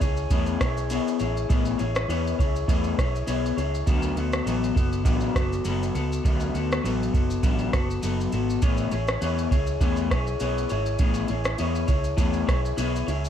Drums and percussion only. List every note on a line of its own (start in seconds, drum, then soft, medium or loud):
0.01 kick medium
0.01 ride soft
0.01 shaker medium
0.17 shaker medium
0.30 kick medium
0.30 ride medium
0.30 shaker medium
0.46 shaker soft
0.61 kick medium
0.61 cross-stick medium
0.61 ride soft
0.61 shaker soft
0.77 shaker medium
0.90 ride medium
0.90 shaker medium
1.08 shaker medium
1.20 ride soft
1.20 shaker medium
1.37 shaker medium
1.50 kick loud
1.50 ride medium
1.50 shaker medium
1.65 shaker medium
1.79 ride soft
1.79 shaker soft
1.95 cross-stick loud
1.95 shaker soft
2.10 ride medium
2.10 shaker medium
2.27 shaker medium
2.39 kick medium
2.39 ride soft
2.39 shaker soft
2.56 shaker medium
2.68 kick medium
2.68 ride medium
2.68 shaker medium
2.84 shaker soft
2.98 kick medium
2.98 cross-stick medium
2.98 ride soft
2.98 shaker medium
3.16 shaker medium
3.28 ride medium
3.28 shaker medium
3.46 shaker medium
3.58 ride soft
3.58 shaker soft
3.75 shaker medium
3.87 kick loud
3.87 ride medium
3.87 shaker medium
4.02 shaker medium
4.17 ride soft
4.17 shaker soft
4.33 cross-stick medium
4.33 shaker medium
4.47 ride medium
4.47 shaker medium
4.64 shaker medium
4.76 kick loud
4.76 ride soft
4.76 shaker medium
4.93 shaker medium
5.05 kick medium
5.05 ride medium
5.05 shaker medium
5.21 shaker soft
5.36 kick medium
5.36 cross-stick medium
5.36 ride soft
5.36 shaker soft
5.53 shaker medium
5.65 ride medium
5.65 shaker medium
5.83 shaker medium
5.95 ride soft
5.95 shaker soft
6.13 shaker medium
6.25 kick loud
6.25 ride medium
6.25 shaker medium
6.40 shaker medium
6.55 ride soft
6.55 shaker soft
6.72 cross-stick medium
6.72 shaker soft
6.86 ride medium
6.86 shaker medium
7.03 shaker medium
7.14 kick loud
7.14 ride soft
7.14 shaker soft
7.30 shaker medium
7.43 kick medium
7.43 ride medium
7.43 shaker medium
7.59 shaker soft
7.73 kick medium
7.73 cross-stick medium
7.73 ride soft
7.73 shaker soft
7.91 shaker medium
8.03 ride medium
8.03 shaker medium
8.21 shaker medium
8.32 ride soft
8.32 shaker soft
8.50 shaker medium
8.62 kick loud
8.62 ride medium
8.62 shaker medium
8.77 shaker medium
8.92 ride soft
8.92 shaker soft
9.08 cross-stick medium
9.08 shaker medium
9.22 ride medium
9.22 shaker medium
9.38 shaker medium
9.51 kick medium
9.51 ride soft
9.51 shaker soft
9.67 shaker medium
9.81 kick medium
9.81 ride medium
9.81 shaker medium
9.97 shaker soft
10.11 kick medium
10.11 cross-stick medium
10.11 ride soft
10.11 shaker soft
10.27 shaker medium
10.40 ride medium
10.40 shaker medium
10.58 shaker medium
10.70 ride soft
10.70 shaker medium
10.86 shaker medium
10.99 kick loud
10.99 ride medium
10.99 shaker medium
11.14 shaker medium
11.28 ride soft
11.28 shaker soft
11.44 cross-stick medium
11.44 shaker soft
11.58 ride medium
11.58 shaker medium
11.75 shaker medium
11.88 kick medium
11.88 ride soft
11.88 shaker medium
12.04 shaker medium
12.18 kick medium
12.18 ride medium
12.18 shaker medium
12.33 shaker soft
12.48 kick medium
12.48 cross-stick medium
12.48 ride soft
12.48 shaker medium
12.65 shaker medium
12.78 ride medium
12.78 shaker medium
12.96 shaker medium
13.08 ride soft
13.08 shaker soft
13.25 shaker medium